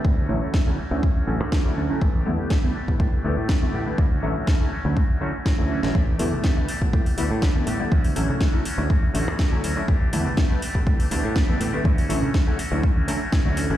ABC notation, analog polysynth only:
X:1
M:4/4
L:1/16
Q:1/4=122
K:D
V:1 name="Analog polysynth"
z2 [D,F,A,CE]3 [D,F,A,CE] z [D,F,A,CE]3 [D,F,A,CE] z2 [D,F,A,CE]2 [D,F,A,CE] | z2 [D,G,A,B,E]3 [D,G,A,B,E] z [D,G,A,B,E]3 [D,G,A,B,E] z2 [D,G,A,B,E]2 [D,G,A,B,E] | z2 [D,F,A,CE]3 [D,F,A,CE] z [D,F,A,CE]3 [D,F,A,CE] z2 [D,F,A,CE]2 [D,F,A,CE] | z2 [D,G,A,B,E]3 [D,G,A,B,E] z [D,G,A,B,E]3 [D,G,A,B,E] z2 [D,G,A,B,E]2 [D,G,A,B,E] |
z2 [D,F,A,CE]3 [D,F,A,CE] z [D,F,A,CE]3 [D,F,A,CE] z2 [D,F,A,CE]2 [D,F,A,CE] | z2 [D,G,A,B,E]3 [D,G,A,B,E] z [D,G,A,B,E]3 [D,G,A,B,E] z2 [D,G,A,B,E]2 [D,G,A,B,E] | z2 [D,F,A,CE]3 [D,F,A,CE] z [D,F,A,CE]3 [D,F,A,CE] z2 [D,F,A,CE]2 [D,F,A,CE] |]